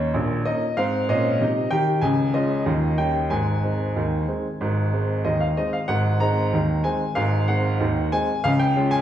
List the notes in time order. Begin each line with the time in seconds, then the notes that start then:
Already playing: D#2 D#3 A#3 C#4 D#4 C#5
0.14 A#1 A#2
0.45 A#3 C#4 D#4 D#5
0.77 G#2 C4 F5
1.09 A#2 C#4 D#5
1.41 C3 D#4
1.71 D#3 G4 G5
2.01 C#2 C#3 G#5
2.34 G#3 C#4 F4 D#5
2.66 D#2 D#3
2.98 G3 C#4 D#4 G5
3.30 G#1 G#2 G#5
3.63 G#3 C4 D#4
3.96 D#2 D#3
4.28 G#3 C4 D#4
4.61 G#1 G#2
4.93 G#3 C4 D#4
5.25 D#2 D#3 D#5
5.40 F5
5.57 G#3 C4 D#4 D#5
5.73 F5
5.88 G#1 G#2 F#5
6.20 G#3 C4 D#4 A#5
6.53 D#2 D#3
6.84 G#3 C4 D#4 G#5
7.15 G#1 G#2 F5
7.48 G#3 C4 D#4 F#5
7.80 D#2 D#3
8.12 G#3 C4 D#4 G#5
8.44 C#2 C#3 F5
8.59 G5
8.76 G#3 C#4 F4
8.91 G#5